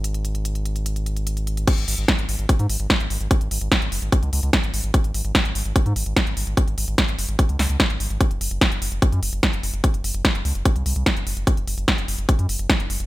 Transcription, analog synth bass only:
\new Staff \with { instrumentName = "Analog synth bass" } { \clef bass \time 4/4 \tempo 4 = 147 gis,,1 | r16 gis,,16 gis,,16 gis,,16 r16 gis,,16 gis,,16 gis,,16 r16 gis,16 gis,,16 gis,,16 r16 gis,,16 gis,,16 gis,,16 | r16 gis,,16 gis,,16 gis,,16 r16 gis,,16 fis,,16 gis,,16 r16 cis,16 cis,16 cis,16 r16 gis,,16 gis,,16 gis,,16 | r16 gis,,16 gis,,16 gis,,16 r16 gis,,16 gis,,16 gis,,16 r16 gis,16 gis,,16 gis,,16 r16 gis,,16 gis,,16 gis,,16 |
r16 gis,,16 gis,,16 gis,,16 r16 gis,,16 fis,,16 gis,,16 r16 cis,16 cis,16 cis,16 r16 gis,,16 gis,,16 gis,,16 | r16 fis,,16 fis,,16 fis,,16 r16 fis,,16 fis,,16 fis,,16 r16 fis,16 fis,,16 fis,,16 r16 fis,,16 fis,,16 fis,,16 | r16 fis,,16 fis,,16 fis,,16 r16 fis,,16 cis,16 fis,,16 r16 bis,,16 bis,,16 bis,,16 r16 fis,,16 fis,,16 fis,,16 | r16 fis,,16 fis,,16 fis,,16 r16 fis,,16 fis,,16 fis,,16 r16 fis,16 fis,,16 fis,,16 r16 fis,,16 fis,,16 fis,,16 | }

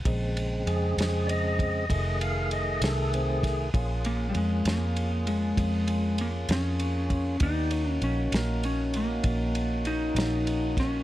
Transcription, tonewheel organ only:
<<
  \new Staff \with { instrumentName = "Tonewheel organ" } { \time 12/8 \key bes \minor \tempo 4. = 65 r4 aes'8 aes'8 <d'' ees''>4. f''8 ees''8 a'8 c'8 r8 | <bes des' f' aes'>1. | <ces' ees' g' d''>8 <bes des' ees' ges'>1~ <bes des' ees' ges'>4. | }
  \new Staff \with { instrumentName = "Tonewheel organ" } { \clef bass \time 12/8 \key bes \minor <des aes c'>2. <ees a gis'>2. | r1. | r1. | }
>>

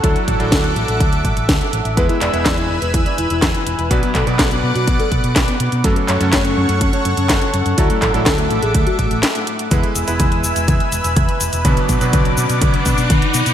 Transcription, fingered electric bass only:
\new Staff \with { instrumentName = "Fingered electric bass" } { \clef bass \time 4/4 \key e \mixolydian \tempo 4 = 124 d,16 r16 a,,16 a,,16 d,8 a,,16 a,,16 d,8 a,,16 a,,16 d,16 r16 a,,16 a,,16 | e,16 r16 e,,16 e,,16 e,8 e,,16 e,,16 e,16 r16 e,,16 e,,16 e,16 r16 e,,16 e,,16 | b,,16 r16 b,16 b,16 b,,8 b,16 b,16 b,,16 r16 b,16 b,16 b,,16 r16 b,16 b,16 | fis,,16 r16 fis,16 fis,16 fis,,8 fis,16 fis,16 fis,,16 r16 fis,16 fis,16 fis,,16 r16 fis,16 fis,16 |
d,16 r16 a,,16 a,,16 d,8 a,,16 a,,16 d,16 r16 a,,16 a,,16 r4 | e,16 r16 e,,16 e,,16 e,8 e,,16 e,,16 e,16 r16 e,,16 e,,16 e,16 r16 e,,16 e,,16 | b,,16 r16 b,16 b,16 b,,8 b,16 b,16 b,,16 r16 b,16 b,16 b,,16 r16 b,16 b,16 | }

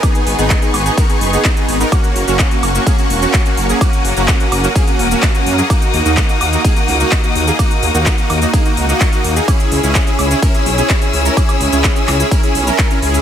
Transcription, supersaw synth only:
\new Staff \with { instrumentName = "Supersaw synth" } { \time 4/4 \key dis \phrygian \tempo 4 = 127 <b dis' gis'>8. <b dis' gis'>8 <b dis' gis'>8 <b dis' gis'>16 <b dis' ais'>16 <b dis' gis'>8 <b dis' gis'>8 <b dis' gis'>8 <b dis' ais'>16 | <ais cis' fis'>8. <ais cis' fis'>8 <ais cis' fis'>8 <ais cis' fis'>16 <ais cis' gis'>16 <ais cis' fis'>8 <ais cis' fis'>8 <ais cis' fis'>8 <ais cis' gis'>16 | <ais cis' fis'>8. <ais cis' fis'>8 <ais cis' fis'>8 <ais cis' fis'>16 <ais cis' gis'>16 <ais cis' fis'>8 <ais cis' fis'>8 <ais cis' fis'>8 <ais cis' gis'>16 | <ais dis' fis'>8. <ais dis' fis'>8 <ais dis' fis'>8 <ais dis' fis'>16 <ais dis' gis'>16 <ais dis' fis'>8 <ais dis' fis'>8 <ais dis' fis'>8 <ais dis' gis'>16 |
<ais dis' fis'>8. <ais dis' fis'>8 <ais dis' fis'>8 <ais dis' fis'>16 <ais dis' gis'>16 <ais dis' fis'>8 <ais dis' fis'>8 <ais dis' fis'>8 <ais dis' gis'>16 | <cis' e' gis'>8. <cis' e' gis'>8 <cis' e' gis'>8 <cis' e' gis'>16 <cis' e' ais'>16 <cis' e' gis'>8 <cis' e' gis'>8 <cis' e' gis'>8 <cis' e' ais'>16 | <cis' e' gis'>8. <cis' e' gis'>8 <cis' e' gis'>8 <cis' e' gis'>16 <cis' e' ais'>16 <cis' e' gis'>8 <cis' e' ais'>8 <cis' e' ais'>16 <cis' e' gis'>8 | }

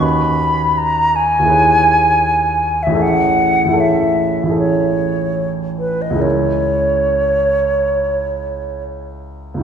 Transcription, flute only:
\new Staff \with { instrumentName = "Flute" } { \time 4/4 \key cis \minor \tempo 4 = 76 b''4 ais''8 gis''2~ gis''16 e''16 | fis''4 e''4 cis''4. b'16 dis''16 | cis''2. r4 | }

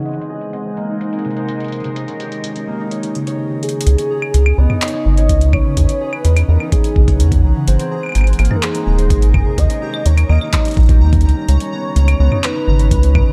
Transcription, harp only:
\new Staff \with { instrumentName = "Harp" } { \time 4/4 \key gis \minor \tempo 4 = 126 bis16 bis16 gis'16 r16 bis16 bis16 ais16 dis'16 bis'16 bis16 bis,16 bis'16 bis16 bis16 r16 bis,16 | cis'16 cis'16 g'16 r16 cis'16 cis'16 ais16 dis'16 cis''16 cis'16 cis16 cis''16 r4 | cis'16 cis'16 gis'16 r16 cis'16 cis'16 b16 dis'16 cis''16 cis'16 cis16 cis''16 cis'16 cis'16 r16 cis16 | cis'16 cis'16 gis'16 r16 cis'16 cis'16 b16 dis'16 cis''16 cis'16 cis16 cis''16 cis'16 cis'16 r16 cis16 |
bis16 bis16 gis'16 r16 bis16 bis16 ais16 dis'16 bis'16 bis16 bis,16 bis'16 r16 bis16 r16 bis,16 | cis'16 cis'16 g'16 r16 cis'16 cis'16 ais16 dis'16 cis''16 cis'16 g16 g'16 g'16 cis'16 g'16 cis'16 | cis'16 cis'16 b16 r16 cis'16 cis'16 b16 dis'16 cis''16 cis'16 cis16 cis''16 cis'16 cis'16 r16 cis16 | }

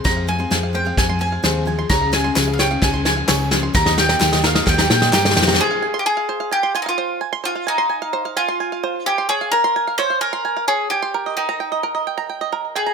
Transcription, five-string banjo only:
\new Staff \with { instrumentName = "Five-string banjo" } { \time 4/4 \key f \minor \tempo 4 = 130 <c'' aes'' c'''>16 f''16 aes''16 c'''16 aes''16 f''16 c''16 f''16 aes''16 c'''16 aes''16 f''16 c''8 aes''16 c'''16 | des''16 f''16 aes''16 c'''16 aes''16 f''16 des''16 f''16 aes''16 c'''16 aes''16 f''16 des''8 aes''16 c'''16 | bes'16 ees''16 g''16 bes''16 g''16 ees''16 bes'16 ees''16 g''16 bes''16 g''16 ees''16 bes'8 g''16 bes''16 | c''16 f''16 aes''16 c'''16 aes''16 f''16 c''16 f''16 aes''16 c'''16 aes''16 f''16 c''8 aes''16 c'''16 |
c''16 f''16 aes''16 c'''16 aes''16 f''16 c''16 f''16 aes''16 c'''16 aes''16 f''16 c''8 aes''16 c'''16 | des''16 f''16 aes''16 c'''16 aes''16 f''16 des''16 f''16 aes''16 c'''16 aes''16 f''16 des''8 aes''16 c'''16 | bes'16 ees''16 g''16 bes''16 g''16 ees''16 bes'16 ees''16 g''16 bes''16 g''16 ees''16 bes'8 g''16 bes''16 | }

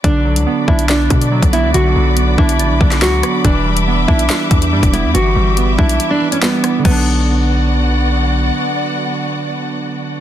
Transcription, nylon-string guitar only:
\new Staff \with { instrumentName = "Nylon-string guitar" } { \time 4/4 \key b \minor \tempo 4 = 141 d'4. e'8 d'4. e'8 | fis'4. e'4 d'8 fis'4 | d'4. e'8 d'4. e'8 | fis'4. e'8. d'8 cis'16 b4 |
b2. r4 | r1 | }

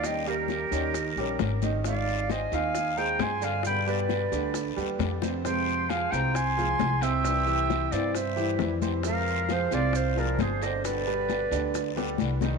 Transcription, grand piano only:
\new Staff \with { instrumentName = "Grand piano" } { \time 4/4 \key f \dorian \tempo 4 = 133 <ees ees''>8 <g g' bes'>4 <ees ees' ees''>4 <g g' bes'>4 <ees ees' ees''>8 | <ees ees' f''>4 <aes aes' c''>8 <ees ees' ees''>4 <aes aes' c''>4 <d d' d''>8~ | <d d' d''>8 <g g' b'>4 <d d' d''>4 <g g' b'>4 <c c' c''>8 | <c c' c''>4 <f f' aes'>8 <c c' c''>4 <f f' aes'>4 <c c' c''>8~ |
<c c' c''>8 <e e' g'>4 <c c' c''>4 <e e' g'>4 <c c' c''>8 | <c c' c''>4 <f f' aes'>8 <c c' c''>4 <f f' aes'>4 <d d' d''>8~ | <d d' d''>8 <g g' b'>4 <d d' d''>4 <g g' b'>4 <ees ees' ees''>8 | }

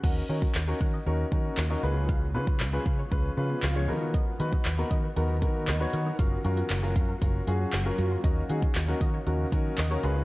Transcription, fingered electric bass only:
\new Staff \with { instrumentName = "Fingered electric bass" } { \clef bass \time 4/4 \key ees \minor \tempo 4 = 117 ees,8 ees8 ees,8 ees8 ees,8 ees8 ees,8 des,8~ | des,8 des8 des,8 des8 des,8 des8 des,8 dis8~ | dis8 dis8 dis,8 dis8 dis,8 dis8 dis,8 dis8 | ges,,8 ges,8 ges,,8 ges,8 ges,,8 ges,8 ges,,8 ges,8 |
ees,8 ees8 ees,8 ees8 ees,8 ees8 ees,8 des,8 | }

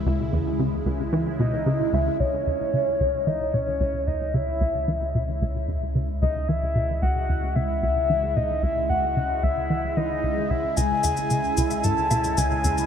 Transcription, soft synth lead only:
\new Staff \with { instrumentName = "Soft synth lead" } { \time 4/4 \key cis \minor \tempo 4 = 112 r2 r8 dis''4 e''8 | cis''2 dis''8 cis''4 dis''8 | e''2 r4. dis''8 | e''4 fis''4 e''8 e''4 dis''8 |
e''8 fis''4 e''4 dis''4 e''8 | gis''2 a''4 gis''4 | }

